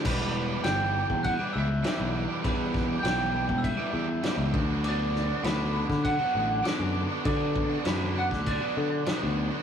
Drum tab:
CC |x---x---x---x---|x---x---x---x---|x---x---x---x---|x---x---x---x---|
SD |----o-------o---|--o-o-------o---|--o-o--o----o---|----o--o----o---|
BD |o------oo-------|o-o----oo-----o-|-------oo-------|o-o----oo-------|